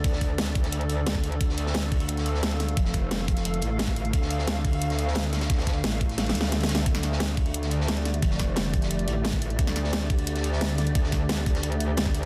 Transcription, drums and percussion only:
0.04 kick, closed hi-hat
0.13 snare
0.21 kick, closed hi-hat
0.38 snare, closed hi-hat
0.55 kick, closed hi-hat
0.63 snare, closed hi-hat
0.72 closed hi-hat
0.81 closed hi-hat
0.89 closed hi-hat
1.06 snare, closed hi-hat
1.15 kick, closed hi-hat
1.24 closed hi-hat
1.32 closed hi-hat
1.41 kick, closed hi-hat
1.49 snare
1.58 closed hi-hat
1.66 snare
1.74 snare, closed hi-hat
1.92 kick, closed hi-hat, open hi-hat
2.00 closed hi-hat
2.08 closed hi-hat
2.17 snare, closed hi-hat
2.26 closed hi-hat
2.34 snare
2.43 snare, closed hi-hat
2.51 closed hi-hat
2.60 snare, closed hi-hat
2.69 closed hi-hat
2.77 kick, closed hi-hat
2.85 snare
2.93 kick, closed hi-hat
3.11 snare, closed hi-hat
3.28 kick, closed hi-hat
3.36 snare, closed hi-hat
3.45 closed hi-hat
3.54 closed hi-hat
3.62 closed hi-hat
3.79 snare, closed hi-hat
3.88 kick, closed hi-hat
3.96 closed hi-hat
4.05 closed hi-hat
4.13 kick, closed hi-hat
4.22 snare
4.30 closed hi-hat
4.38 snare
4.47 snare, closed hi-hat
4.64 kick, closed hi-hat, open hi-hat
4.73 closed hi-hat
4.82 closed hi-hat
4.90 snare, closed hi-hat
4.99 closed hi-hat
5.08 snare
5.15 snare, closed hi-hat
5.24 closed hi-hat
5.33 snare, closed hi-hat
5.41 snare, closed hi-hat
5.50 kick, snare, closed hi-hat
5.58 snare, closed hi-hat
5.67 kick, snare, closed hi-hat
5.84 snare, closed hi-hat, open hi-hat
6.01 kick, closed hi-hat
6.09 snare, closed hi-hat
6.18 snare, closed hi-hat
6.27 snare, closed hi-hat
6.35 closed hi-hat
6.41 snare
6.43 snare, closed hi-hat
6.52 snare, closed hi-hat
6.61 snare, closed hi-hat
6.69 snare, closed hi-hat
6.75 snare, closed hi-hat
6.86 kick, closed hi-hat
6.95 snare
7.03 snare, closed hi-hat
7.12 snare
7.20 snare, closed hi-hat
7.37 kick, closed hi-hat, open hi-hat
7.46 closed hi-hat
7.54 closed hi-hat
7.62 snare, closed hi-hat
7.71 closed hi-hat
7.80 snare
7.88 snare, closed hi-hat
7.97 closed hi-hat
8.05 snare, closed hi-hat
8.14 closed hi-hat
8.22 kick, closed hi-hat
8.30 snare
8.39 kick, snare, closed hi-hat
8.56 snare, closed hi-hat
8.73 kick, closed hi-hat
8.82 snare, closed hi-hat
8.91 closed hi-hat
8.99 closed hi-hat
9.08 closed hi-hat
9.24 snare, closed hi-hat
9.33 kick, closed hi-hat
9.42 closed hi-hat
9.50 closed hi-hat
9.59 kick, closed hi-hat
9.67 snare
9.76 snare, closed hi-hat
9.84 snare
9.93 snare, closed hi-hat
10.10 kick, closed hi-hat, open hi-hat
10.19 closed hi-hat
10.27 closed hi-hat
10.35 snare, closed hi-hat
10.44 closed hi-hat
10.52 snare
10.61 snare, closed hi-hat
10.70 closed hi-hat
10.78 snare, closed hi-hat
10.87 closed hi-hat
10.95 kick, closed hi-hat
11.04 snare
11.12 kick, snare, closed hi-hat
11.29 snare, closed hi-hat
11.46 kick, closed hi-hat
11.54 snare, closed hi-hat
11.63 closed hi-hat
11.72 closed hi-hat
11.80 closed hi-hat
11.97 snare, closed hi-hat
12.06 kick, closed hi-hat
12.15 closed hi-hat

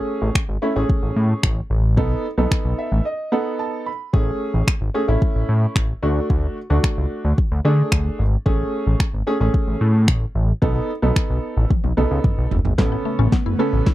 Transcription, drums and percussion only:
0.35 finger snap, kick
0.89 kick
1.43 finger snap, kick
1.97 kick
2.51 finger snap, kick
4.14 kick
4.67 finger snap, kick
5.22 kick
5.76 finger snap, kick
6.30 kick
6.84 finger snap, kick
7.38 kick
7.92 finger snap, kick
8.46 kick
9.00 finger snap, kick
9.54 kick
10.08 finger snap, kick
10.62 kick
11.16 finger snap, kick
11.70 kick, high tom
11.84 high tom
11.97 mid tom
12.24 kick, mid tom
12.51 floor tom
12.65 floor tom
12.78 kick, snare
13.32 kick, snare
13.86 kick, snare

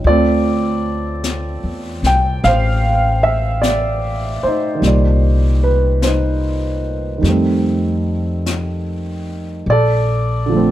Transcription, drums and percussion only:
0.04 brush sweep
1.24 brush sweep, snare, hi-hat pedal
2.03 snare
2.43 brush sweep, snare
3.63 brush sweep, snare, hi-hat pedal
4.83 brush sweep, snare
6.02 brush sweep, snare, hi-hat pedal
7.24 brush sweep, snare
8.46 brush sweep, snare, hi-hat pedal
9.67 brush sweep

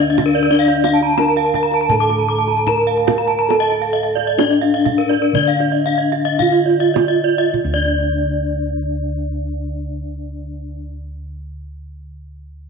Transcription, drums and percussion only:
0.18 kendang slap, kendang high, kendang low
0.68 kendang slap
0.84 kendang high
1.01 kendang slap
1.18 kendang high
1.36 kendang slap
1.54 kendang slap, kendang low
1.72 kendang slap
1.90 kendang low
2.09 kendang slap
2.47 kendang slap
2.67 kendang low
3.08 kendang slap, kendang high, kendang low
3.50 kendang high
3.72 kendang slap
4.17 kendang slap
4.39 kendang high
4.63 kendang slap
4.86 kendang slap, kendang low
5.10 kendang slap
5.35 kendang low
5.60 kendang slap
5.87 kendang slap
6.13 kendang slap
6.40 kendang slap, kendang low
6.96 kendang slap, kendang high, kendang low
7.54 kendang low

